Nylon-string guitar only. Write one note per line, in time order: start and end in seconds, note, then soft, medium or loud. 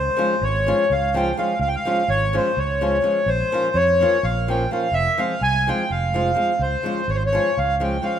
0.17 0.34 F3 medium
0.17 0.34 G#3 medium
0.17 0.34 C#4 medium
0.17 0.35 F4 medium
0.66 0.83 F3 medium
0.66 0.83 G#3 medium
0.66 0.83 C#4 medium
0.66 0.84 F4 medium
1.14 1.30 F3 medium
1.14 1.30 G#3 medium
1.14 1.31 C#4 medium
1.14 1.31 F4 medium
1.37 1.53 F3 medium
1.37 1.53 G#3 soft
1.37 1.53 C#4 medium
1.37 1.54 F4 medium
1.85 2.01 F3 medium
1.85 2.02 G#3 medium
1.85 2.02 C#4 medium
1.85 2.02 F4 medium
2.33 2.49 F3 medium
2.33 2.50 G#3 medium
2.33 2.50 C#4 medium
2.33 2.50 F4 medium
2.81 2.97 F3 medium
2.81 2.97 G#3 medium
2.81 2.97 C#4 medium
2.81 2.97 F4 medium
3.02 3.18 F3 medium
3.02 3.19 G#3 soft
3.02 3.19 C#4 medium
3.02 3.19 F4 medium
3.52 3.68 F3 medium
3.52 3.68 A#3 medium
3.52 3.68 C#4 medium
3.52 3.69 F4 medium
4.01 4.16 F3 medium
4.01 4.17 A#3 medium
4.01 4.17 C#4 medium
4.01 4.17 F4 medium
4.48 4.64 F3 medium
4.48 4.64 A#3 medium
4.48 4.64 C#4 medium
4.48 4.65 F4 medium
4.71 4.86 F3 medium
4.71 4.86 A#3 soft
4.71 4.87 C#4 medium
4.71 4.87 F4 medium
5.18 5.34 F3 medium
5.18 5.34 G#3 soft
5.18 5.35 C4 medium
5.18 5.35 F4 medium
5.67 5.83 F3 medium
5.67 5.83 G#3 medium
5.67 5.83 C4 medium
5.67 5.84 F4 medium
6.14 6.30 F3 medium
6.14 6.30 G#3 medium
6.14 6.30 C4 medium
6.14 6.31 F4 medium
6.35 6.51 F3 medium
6.35 6.52 G#3 soft
6.35 6.52 C4 soft
6.35 6.52 F4 medium
6.83 7.00 F3 medium
6.83 7.00 G#3 medium
6.83 7.01 C#4 medium
6.83 7.01 F4 medium
7.32 7.49 F3 medium
7.32 7.49 G#3 medium
7.32 7.49 C#4 medium
7.32 7.50 F4 medium
7.80 7.96 F3 medium
7.80 7.96 G#3 medium
7.80 7.96 C#4 medium
7.80 7.96 F4 medium
8.02 8.18 F3 soft
8.02 8.18 G#3 soft
8.02 8.19 C#4 soft
8.02 8.19 F4 medium